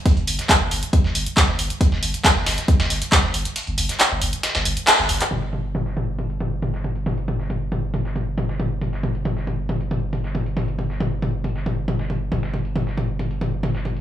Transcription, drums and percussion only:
0.06 kick loud
0.06 closed hi-hat medium
0.06 open hi-hat medium
0.17 closed hi-hat soft
0.27 closed hi-hat medium
0.27 open hi-hat loud
0.39 snare soft
0.39 closed hi-hat medium
0.49 kick loud
0.49 snare loud
0.49 clap loud
0.49 closed hi-hat medium
0.71 closed hi-hat medium
0.71 open hi-hat loud
0.83 closed hi-hat medium
0.93 kick loud
0.93 closed hi-hat medium
1.04 snare soft
1.15 closed hi-hat medium
1.15 open hi-hat loud
1.26 closed hi-hat medium
1.37 kick loud
1.37 snare loud
1.37 clap loud
1.37 closed hi-hat medium
1.48 snare soft
1.59 closed hi-hat medium
1.59 open hi-hat loud
1.70 closed hi-hat medium
1.81 kick loud
1.81 closed hi-hat medium
1.92 snare soft
2.03 closed hi-hat medium
2.03 open hi-hat loud
2.14 closed hi-hat soft
2.14 closed hi-hat medium
2.24 kick loud
2.24 snare loud
2.24 clap loud
2.24 closed hi-hat medium
2.36 snare soft
2.46 snare loud
2.46 closed hi-hat medium
2.46 open hi-hat loud
2.58 snare soft
2.58 closed hi-hat medium
2.68 kick loud
2.68 closed hi-hat medium
2.80 snare loud
2.80 closed hi-hat medium
2.90 snare soft
2.90 open hi-hat loud
3.02 closed hi-hat medium
3.12 kick loud
3.12 snare loud
3.12 clap loud
3.12 closed hi-hat loud
3.12 closed hi-hat medium
3.23 snare soft
3.34 closed hi-hat medium
3.34 open hi-hat loud
3.45 closed hi-hat soft
3.45 closed hi-hat medium
3.56 closed hi-hat medium
3.56 open hi-hat medium
3.67 closed hi-hat soft
3.78 closed hi-hat medium
3.78 open hi-hat loud
3.89 snare soft
3.89 closed hi-hat medium
4.00 snare loud
4.00 clap loud
4.00 closed hi-hat medium
4.21 closed hi-hat medium
4.21 open hi-hat loud
4.33 closed hi-hat medium
4.43 snare loud
4.43 closed hi-hat medium
4.55 snare loud
4.55 closed hi-hat medium
4.65 open hi-hat loud
4.77 closed hi-hat medium
4.87 snare loud
4.87 clap loud
4.87 closed hi-hat medium
4.99 snare soft
5.09 closed hi-hat medium
5.09 open hi-hat loud
5.21 clap medium
5.21 closed hi-hat medium
5.31 closed hi-hat medium
5.31 mid tom medium
5.42 snare soft
5.53 closed hi-hat medium
5.53 mid tom medium
5.64 closed hi-hat soft
5.75 closed hi-hat medium
5.75 mid tom medium
5.86 snare soft
5.97 closed hi-hat medium
5.97 mid tom medium
6.19 closed hi-hat medium
6.19 mid tom medium
6.30 closed hi-hat soft
6.40 closed hi-hat medium
6.40 mid tom medium
6.62 closed hi-hat medium
6.62 mid tom medium
6.74 snare soft
6.84 closed hi-hat medium
6.84 mid tom medium
6.96 closed hi-hat soft
7.06 mid tom medium
7.06 open hi-hat medium
7.18 closed hi-hat soft
7.28 closed hi-hat medium
7.28 mid tom medium
7.40 snare soft
7.50 closed hi-hat medium
7.50 mid tom medium
7.72 closed hi-hat medium
7.72 mid tom medium
7.94 closed hi-hat medium
7.94 mid tom medium
8.05 snare soft
8.16 closed hi-hat medium
8.16 mid tom medium
8.38 closed hi-hat medium
8.38 mid tom medium
8.49 snare soft
8.60 closed hi-hat medium
8.60 mid tom medium
8.81 closed hi-hat medium
8.81 mid tom medium
8.93 snare soft
9.03 closed hi-hat medium
9.03 mid tom medium
9.15 closed hi-hat soft
9.25 closed hi-hat medium
9.25 mid tom medium
9.37 snare soft
9.47 closed hi-hat medium
9.47 mid tom medium
9.69 closed hi-hat medium
9.69 mid tom medium
9.81 closed hi-hat soft
9.91 closed hi-hat medium
9.91 mid tom medium
10.13 closed hi-hat medium
10.13 mid tom medium
10.24 snare soft
10.35 closed hi-hat medium
10.35 mid tom medium
10.46 closed hi-hat soft
10.57 mid tom medium
10.57 open hi-hat medium
10.68 closed hi-hat soft
10.79 closed hi-hat medium
10.79 mid tom medium
10.90 snare soft
11.00 closed hi-hat medium
11.00 mid tom medium
11.22 closed hi-hat medium
11.22 mid tom medium
11.44 closed hi-hat medium
11.44 mid tom medium
11.56 snare soft
11.66 closed hi-hat medium
11.66 mid tom medium
11.88 closed hi-hat medium
11.88 mid tom medium
11.99 snare soft
12.10 closed hi-hat medium
12.10 mid tom medium
12.32 closed hi-hat medium
12.32 mid tom medium
12.43 snare soft
12.54 closed hi-hat medium
12.54 mid tom medium
12.65 closed hi-hat soft
12.76 closed hi-hat medium
12.76 mid tom medium
12.87 snare soft
12.97 closed hi-hat medium
12.97 mid tom medium
13.19 closed hi-hat medium
13.19 mid tom medium
13.31 closed hi-hat soft
13.41 closed hi-hat medium
13.41 mid tom medium
13.63 closed hi-hat medium
13.63 mid tom medium
13.75 snare soft
13.85 closed hi-hat medium
13.85 mid tom medium
13.97 closed hi-hat soft

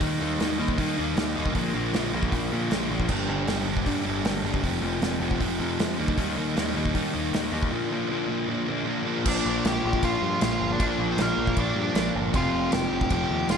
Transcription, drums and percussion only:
0.01 kick loud
0.01 open hi-hat medium
0.40 snare loud
0.40 open hi-hat medium
0.68 kick medium
0.78 kick medium
0.78 open hi-hat medium
1.17 snare loud
1.17 open hi-hat medium
1.46 kick medium
1.55 kick loud
1.55 open hi-hat medium
1.94 snare loud
1.94 open hi-hat medium
2.23 kick medium
2.32 kick medium
2.32 open hi-hat medium
2.71 snare loud
2.71 open hi-hat medium
3.00 kick medium
3.09 kick loud
3.09 crash loud
3.47 snare medium
3.47 open hi-hat medium
3.77 kick medium
3.86 kick medium
3.86 open hi-hat medium
4.25 snare loud
4.25 open hi-hat medium
4.54 kick loud
4.64 kick medium
4.64 open hi-hat medium
5.02 snare loud
5.02 open hi-hat medium
5.31 kick medium
5.41 kick medium
5.41 open hi-hat medium
5.79 snare loud
5.79 open hi-hat medium
6.08 kick loud
6.18 kick loud
6.18 open hi-hat medium
6.57 snare loud
6.57 open hi-hat medium
6.85 kick medium
6.95 kick loud
6.95 open hi-hat medium
7.34 snare loud
7.34 open hi-hat medium
7.63 kick medium
9.26 kick loud
9.26 crash loud
9.26 crash medium
9.65 snare loud
9.65 crash medium
9.93 kick medium
10.03 kick medium
10.03 crash medium
10.41 snare loud
10.41 crash medium
10.80 kick loud
10.80 crash medium
11.18 snare loud
11.18 crash medium
11.47 kick medium
11.57 kick medium
11.57 crash medium
11.95 snare loud
11.95 crash medium
12.34 kick loud
12.34 crash medium
12.72 snare loud
12.72 crash medium
13.01 kick loud
13.10 kick loud
13.10 crash medium
13.49 snare loud
13.49 crash medium

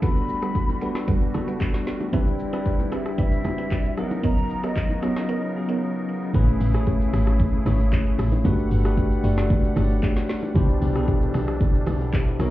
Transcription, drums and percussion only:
0.02 kick loud
0.02 low conga medium
0.02 shaker medium
0.16 shaker medium
0.29 shaker medium
0.43 cross-stick medium
0.43 shaker medium
0.55 kick medium
0.55 high bongo medium
0.55 shaker medium
0.69 low bongo medium
0.69 shaker medium
0.81 high bongo medium
0.81 shaker loud
0.95 cross-stick medium
0.95 snare medium
0.95 shaker medium
1.08 kick loud
1.08 low conga medium
1.08 shaker medium
1.22 shaker soft
1.34 cross-stick medium
1.34 low bongo medium
1.34 low conga medium
1.34 shaker medium
1.48 shaker medium
1.61 kick medium
1.61 clap medium
1.61 high bongo medium
1.61 shaker medium
1.74 snare medium
1.74 shaker medium
1.87 snare medium
1.87 shaker loud
2.01 high bongo medium
2.01 low bongo medium
2.01 shaker soft
2.12 kick loud
2.12 low conga medium
2.12 shaker medium
2.27 shaker medium
2.39 shaker loud
2.53 cross-stick medium
2.53 shaker medium
2.66 kick medium
2.66 high bongo medium
2.66 shaker medium
2.80 low bongo medium
2.80 shaker medium
2.92 cross-stick medium
2.92 high bongo medium
2.92 shaker medium
3.06 cross-stick loud
3.06 shaker medium
3.18 kick loud
3.18 low conga medium
3.18 shaker medium
3.32 shaker soft
3.44 cross-stick medium
3.44 low bongo medium
3.44 low conga medium
3.44 shaker medium
3.59 shaker medium
3.71 kick medium
3.71 clap medium
3.71 high bongo medium
3.71 shaker medium
3.85 shaker medium
3.97 cross-stick loud
3.97 shaker loud
4.11 high bongo soft
4.11 low bongo medium
4.11 shaker soft
4.23 kick loud
4.23 low conga medium
4.23 shaker medium
4.37 shaker medium
4.50 shaker loud
4.64 cross-stick loud
4.64 shaker medium
4.76 kick medium
4.76 clap medium
4.76 high bongo medium
4.76 shaker medium
4.90 low bongo medium
4.90 shaker medium
5.03 cross-stick loud
5.03 high bongo medium
5.03 shaker loud
5.16 cross-stick medium
5.16 snare medium
5.16 shaker medium
6.34 kick loud
6.34 low conga medium
6.34 shaker medium
6.48 shaker medium
6.60 open hi-hat medium
6.60 shaker loud
6.74 cross-stick loud
6.74 shaker medium
6.87 kick medium
6.87 high bongo medium
6.87 shaker medium
7.01 shaker medium
7.13 cross-stick loud
7.13 open hi-hat medium
7.13 shaker loud
7.27 cross-stick loud
7.27 shaker medium
7.40 kick loud
7.40 low conga medium
7.40 shaker medium
7.53 shaker medium
7.66 cross-stick medium
7.66 open hi-hat medium
7.66 low bongo medium
7.66 low conga medium
7.66 shaker medium
7.80 shaker medium
7.92 kick medium
7.92 clap medium
7.92 high bongo medium
7.92 shaker medium
8.06 shaker medium
8.19 cross-stick loud
8.19 open hi-hat medium
8.19 shaker loud
8.32 high bongo medium
8.32 low bongo medium
8.32 shaker soft
8.44 kick loud
8.44 low conga medium
8.44 shaker medium
8.59 shaker medium
8.71 open hi-hat medium
8.71 shaker loud
8.85 cross-stick loud
8.85 shaker medium
8.97 kick medium
8.97 high bongo medium
8.97 shaker medium
9.12 shaker medium
9.24 open hi-hat medium
9.24 shaker loud
9.38 cross-stick medium
9.38 snare medium
9.38 shaker medium
9.50 kick loud
9.50 low conga medium
9.50 shaker medium
9.64 shaker medium
9.76 cross-stick medium
9.76 open hi-hat medium
9.76 low bongo medium
9.76 low conga medium
9.76 shaker medium
9.90 shaker medium
10.03 kick medium
10.03 clap medium
10.03 high bongo medium
10.03 shaker medium
10.17 snare medium
10.17 shaker medium
10.29 snare medium
10.29 open hi-hat medium
10.29 shaker loud
10.43 high bongo medium
10.43 low bongo medium
10.43 shaker soft
10.54 kick loud
10.54 low conga medium
10.54 shaker medium
10.69 shaker medium
10.82 open hi-hat medium
10.82 shaker loud
10.96 cross-stick medium
10.96 shaker medium
11.08 kick loud
11.08 high bongo medium
11.08 shaker medium
11.22 shaker medium
11.34 cross-stick loud
11.34 open hi-hat medium
11.34 shaker loud
11.48 cross-stick loud
11.48 shaker medium
11.61 kick loud
11.61 low conga medium
11.61 shaker medium
11.74 shaker medium
11.86 cross-stick medium
11.86 open hi-hat medium
11.86 low bongo medium
11.86 low conga medium
11.86 shaker medium
12.01 shaker medium
12.13 kick medium
12.13 clap medium
12.13 high bongo medium
12.13 shaker medium
12.27 shaker medium
12.40 cross-stick loud
12.40 open hi-hat medium
12.40 shaker loud

